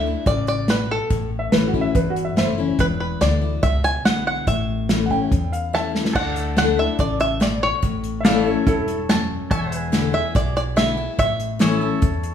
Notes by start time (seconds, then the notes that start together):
Already playing: D2 E5
0.07 D4 E4
0.26 A1 C#3 D5, kick, closed hi-hat
0.47 D5, closed hi-hat
0.68 B2 B4, snare, closed hi-hat
0.91 A4
1.10 A1 A2, kick, closed hi-hat
1.39 E5
1.52 A1 E3 A3 C#4 E4 B4, snare, closed hi-hat
1.68 F#4
1.74 C#4 E4, kick
1.81 E5
1.95 G1 E2 B4, kick, closed hi-hat
2.10 F#4
2.16 closed hi-hat
2.25 E5
2.36 F#1 E3 A3 C#4 E4 C5 E5, snare, closed hi-hat
2.58 C#4 E4
2.79 E1 E2 B4, kick, closed hi-hat
3.00 B4
3.21 D2 D3 G#3 B3 E4 D5, snare, closed hi-hat
3.42 B3 E4
3.63 C#2 B2 E5, kick, closed hi-hat
3.84 G#5, closed hi-hat
4.05 B1 D3 G#3 B3 E4 F#5, snare, closed hi-hat
4.27 F#5
4.47 A1 A2 E5, kick, closed hi-hat
4.89 E3 A3 C#4 E4, snare, closed hi-hat
5.06 F#5
5.10 C#4 E4 G5, kick
5.32 E2, kick, closed hi-hat
5.52 F5, closed hi-hat
5.73 E3 A3 C#4 E4 E5 A5, snare
5.95 snare
6.05 snare
6.13 D2 D3 A4 D5 F#5, kick, crash
6.36 closed hi-hat
6.40 E5
6.56 D3 A3 D4 E4 F#5, snare, closed hi-hat
6.78 D4 E4 E5
6.99 A1 C#3 D5, kick, closed hi-hat
7.20 E5, closed hi-hat
7.40 B2 D5, snare, closed hi-hat
7.63 C#5
7.82 A1 A2, kick, closed hi-hat
8.04 closed hi-hat
8.21 E5
8.25 E3 A3 C#4 E4 A4 D5 E5 F5, snare, closed hi-hat
8.45 C#4 E4 A4 C#5
8.67 E1 G2 E4 A4, kick, closed hi-hat
8.88 closed hi-hat
9.09 F#2 A5, snare, closed hi-hat
9.51 E1 E2 A4 C#5 E5 F#5, kick, closed hi-hat
9.71 G#4, closed hi-hat
9.76 B4
9.92 D3 G#3 B3 E4, snare, closed hi-hat
10.13 B3 E4 E5
10.35 B1 B2 D5, kick, closed hi-hat
10.56 D5, closed hi-hat
10.76 D3 G#3 B3 E4 E5, snare, closed hi-hat
10.97 B3 E4
11.19 A1 A2 E5, kick, closed hi-hat
11.40 closed hi-hat
11.59 E3 A3 C#4 E4 G#4 C#5 E5, snare, closed hi-hat
11.81 C#4 E4 A4
12.02 E2, kick, closed hi-hat
12.23 closed hi-hat